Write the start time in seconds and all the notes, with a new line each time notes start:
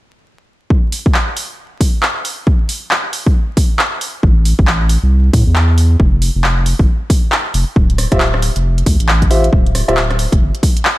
0.70 kick
0.92 open hi-hat
1.06 kick
1.14 clap
1.37 open hi-hat
1.81 kick, open hi-hat
2.03 clap
2.25 open hi-hat
2.47 kick
2.69 open hi-hat
2.91 clap
3.13 open hi-hat
3.26 kick
3.57 kick, open hi-hat
3.79 clap
4.01 open hi-hat
4.23 A1, kick
4.45 open hi-hat
4.59 A1, kick
4.67 clap
4.89 open hi-hat
5.03 C2
5.33 A2, kick, open hi-hat
5.47 E2
5.56 clap
5.78 open hi-hat
6.00 F1, kick
6.22 open hi-hat
6.35 F1
6.44 clap
6.66 open hi-hat
6.79 G#1, kick
7.10 kick, open hi-hat
7.32 clap
7.54 F1, open hi-hat
7.76 D1, kick
7.90 closed hi-hat
7.98 cross-stick, open hi-hat
8.12 D1 F4 G4 C5 E5, kick, cross-stick, closed hi-hat
8.20 clap
8.34 cross-stick
8.42 open hi-hat
8.56 F1, closed hi-hat
8.78 closed hi-hat
8.86 D2, kick, open hi-hat
9.00 A1, closed hi-hat
9.09 clap
9.22 kick, closed hi-hat
9.31 F4 G4 C5 E5, open hi-hat
9.44 closed hi-hat
9.53 D1, kick
9.66 closed hi-hat
9.75 cross-stick, open hi-hat
9.88 D1 F4 G4 C5 E5, cross-stick, closed hi-hat
9.97 clap
10.10 cross-stick, closed hi-hat
10.19 open hi-hat
10.32 F1, kick, closed hi-hat
10.41 G1
10.55 closed hi-hat
10.63 kick, open hi-hat
10.77 closed hi-hat
10.85 clap